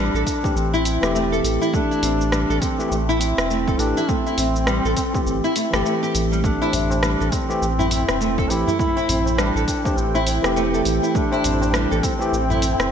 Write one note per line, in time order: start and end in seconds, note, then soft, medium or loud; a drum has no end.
0.00 0.14 G3 loud
0.00 0.58 D4 loud
0.14 0.24 A1 loud
0.14 0.22 A4 medium
0.14 shaker soft
0.27 kick medium
0.27 open hi-hat medium
0.27 shaker medium
0.43 0.71 E3 medium
0.43 0.71 A3 medium
0.43 0.71 C4 medium
0.43 0.72 G4 medium
0.43 kick loud
0.43 shaker soft
0.56 0.98 A1 medium
0.56 1.44 C4 medium
0.56 shaker soft
0.74 1.14 E4 loud
0.74 shaker soft
0.85 open hi-hat medium
0.85 shaker medium
1.01 1.41 E1 medium
1.01 2.74 E3 medium
1.01 2.75 A3 medium
1.01 2.75 C4 medium
1.01 2.76 G4 loud
1.01 cross-stick medium
1.01 shaker soft
1.15 1.31 A3 loud
1.15 shaker soft
1.32 1.39 A4 medium
1.32 shaker soft
1.44 1.59 A1 medium
1.44 open hi-hat medium
1.44 shaker medium
1.61 1.73 E4 loud
1.61 shaker soft
1.74 1.90 A3 medium
1.74 2.63 D4 loud
1.74 kick loud
1.74 shaker soft
1.91 2.02 E4 loud
1.91 shaker soft
2.03 2.45 A1 loud
2.03 2.20 C4 medium
2.03 open hi-hat medium
2.03 shaker medium
2.21 shaker soft
2.32 2.49 G3 loud
2.32 cross-stick medium
2.32 shaker soft
2.50 2.60 A1 loud
2.50 2.57 A4 medium
2.50 shaker soft
2.61 2.92 C4 loud
2.61 kick loud
2.61 open hi-hat medium
2.61 shaker medium
2.79 2.94 E3 medium
2.79 2.94 A3 medium
2.79 2.94 C4 medium
2.79 2.95 G4 loud
2.79 shaker soft
2.91 3.34 A1 medium
2.91 3.21 A3 loud
2.91 shaker soft
3.09 3.49 E4 loud
3.09 shaker soft
3.20 3.81 C4 loud
3.20 open hi-hat medium
3.20 shaker medium
3.38 3.76 E1 medium
3.38 cross-stick medium
3.38 shaker soft
3.50 3.66 A3 loud
3.50 shaker soft
3.68 3.75 A4 medium
3.68 kick loud
3.68 shaker soft
3.78 3.94 A1 medium
3.78 3.98 E3 loud
3.78 3.99 A3 medium
3.78 3.99 C4 medium
3.78 4.10 D4 loud
3.78 3.99 G4 loud
3.78 open hi-hat medium
3.78 shaker medium
3.97 4.08 E4 loud
3.97 shaker soft
4.09 4.25 A3 medium
4.09 5.85 C4 loud
4.09 kick loud
4.09 shaker soft
4.26 4.37 E4 loud
4.26 shaker soft
4.38 4.80 A1 loud
4.38 4.55 C4 medium
4.38 open hi-hat medium
4.38 shaker medium
4.56 shaker soft
4.67 4.84 G3 loud
4.67 cross-stick medium
4.67 shaker soft
4.85 4.95 A1 loud
4.85 4.92 A4 medium
4.85 shaker soft
4.97 kick medium
4.97 open hi-hat medium
4.97 shaker medium
5.13 5.41 E3 medium
5.13 5.41 A3 medium
5.13 5.42 C4 medium
5.13 5.42 G4 medium
5.13 kick loud
5.13 shaker soft
5.26 5.41 G1 loud
5.26 shaker soft
5.44 5.55 E4 loud
5.44 shaker soft
5.56 5.66 A3 medium
5.56 open hi-hat medium
5.56 shaker medium
5.71 5.83 G1 medium
5.71 7.44 E3 medium
5.71 7.45 A3 medium
5.71 7.46 C4 medium
5.71 5.84 A4 medium
5.71 cross-stick medium
5.71 shaker soft
5.75 7.46 G4 medium
5.85 6.02 A3 medium
5.85 shaker soft
6.03 6.14 G4 loud
6.03 shaker soft
6.15 6.57 A1 medium
6.15 open hi-hat medium
6.15 shaker medium
6.32 6.43 G3 medium
6.32 shaker soft
6.44 6.61 A3 medium
6.44 7.34 D4 loud
6.44 12.91 E4 medium
6.44 12.91 A4 medium
6.44 12.91 C5 medium
6.44 12.91 G5 medium
6.44 kick loud
6.44 shaker soft
6.62 6.72 E4 loud
6.62 tabla na medium
6.62 shaker soft
6.72 7.16 A1 loud
6.72 6.90 C4 medium
6.72 open hi-hat medium
6.72 tabla tin medium
6.72 tabla ge medium
6.72 shaker medium
6.90 tabla na medium
6.90 shaker soft
7.03 7.20 G3 loud
7.03 cross-stick medium
7.03 shaker soft
7.20 7.30 A1 loud
7.20 7.27 A4 medium
7.20 shaker soft
7.32 8.52 C4 loud
7.32 kick loud
7.32 open hi-hat loud
7.32 tabla tin medium
7.32 shaker medium
7.48 7.64 E3 loud
7.48 7.64 A3 medium
7.48 7.65 C4 medium
7.48 7.65 G4 loud
7.48 shaker soft
7.62 8.04 A1 medium
7.62 shaker soft
7.79 8.19 E4 loud
7.79 tabla tin soft
7.79 tabla ge loud
7.79 shaker soft
7.91 open hi-hat medium
7.91 shaker medium
8.09 8.47 E1 medium
8.09 cross-stick medium
8.09 tabla tin soft
8.09 shaker soft
8.20 8.36 A3 loud
8.20 shaker soft
8.37 8.45 A4 medium
8.37 kick loud
8.37 tabla tin medium
8.37 shaker soft
8.49 8.65 A1 medium
8.49 8.69 E3 medium
8.49 8.69 A3 medium
8.49 8.70 C4 medium
8.49 8.79 E4 loud
8.49 8.70 G4 loud
8.49 open hi-hat medium
8.49 shaker medium
8.67 8.79 E4 medium
8.67 tabla ge medium
8.67 shaker soft
8.79 8.96 A3 medium
8.79 9.41 E4 loud
8.79 kick loud
8.79 shaker soft
8.96 9.07 E4 loud
8.96 tabla na medium
8.96 shaker soft
9.08 9.51 A1 medium
9.08 9.25 C4 medium
9.08 open hi-hat medium
9.08 tabla tin medium
9.08 tabla ge medium
9.08 shaker medium
9.26 tabla na medium
9.26 shaker soft
9.38 9.55 G3 loud
9.38 9.99 D4 loud
9.38 cross-stick medium
9.38 shaker soft
9.55 9.65 A1 loud
9.55 9.63 A4 medium
9.55 shaker soft
9.67 kick medium
9.67 open hi-hat medium
9.67 tabla tin soft
9.67 shaker medium
9.84 10.12 E3 medium
9.84 10.12 A3 medium
9.84 10.12 C4 medium
9.84 10.13 G4 medium
9.84 kick loud
9.84 tabla na medium
9.84 shaker soft
9.97 10.40 A1 medium
9.97 10.85 C4 medium
9.97 shaker soft
10.14 10.55 E4 loud
10.14 tabla na medium
10.14 shaker soft
10.27 open hi-hat medium
10.27 tabla tin medium
10.27 shaker medium
10.42 10.82 E1 medium
10.42 12.15 E3 medium
10.42 12.16 A3 medium
10.42 12.17 C4 medium
10.42 12.17 G4 medium
10.42 cross-stick medium
10.42 shaker soft
10.56 10.72 A3 loud
10.56 shaker soft
10.74 10.80 A4 medium
10.74 shaker soft
10.85 11.00 A1 medium
10.85 open hi-hat medium
10.85 shaker medium
11.03 11.14 E4 medium
11.03 shaker soft
11.15 11.32 A3 medium
11.15 12.06 D4 loud
11.15 kick loud
11.15 shaker soft
11.32 11.43 E4 loud
11.32 tabla na medium
11.32 shaker soft
11.44 11.87 A1 loud
11.44 11.61 C4 medium
11.44 open hi-hat medium
11.44 tabla tin medium
11.44 tabla ge medium
11.44 shaker medium
11.62 tabla na medium
11.62 shaker soft
11.74 11.90 G3 loud
11.74 cross-stick medium
11.74 shaker soft
11.91 12.01 A1 loud
11.91 11.98 A4 medium
11.91 shaker soft
12.03 12.91 C4 loud
12.03 kick loud
12.03 open hi-hat medium
12.03 tabla tin medium
12.03 shaker medium
12.19 12.35 E3 medium
12.19 12.35 A3 medium
12.19 12.35 C4 medium
12.19 12.36 G4 loud
12.19 shaker soft
12.32 12.75 A1 medium
12.32 shaker soft
12.50 12.90 E4 loud
12.50 tabla tin soft
12.50 tabla ge medium
12.50 shaker soft
12.62 open hi-hat medium
12.62 shaker medium
12.79 12.91 E1 medium
12.79 cross-stick medium
12.79 tabla tin soft
12.79 shaker soft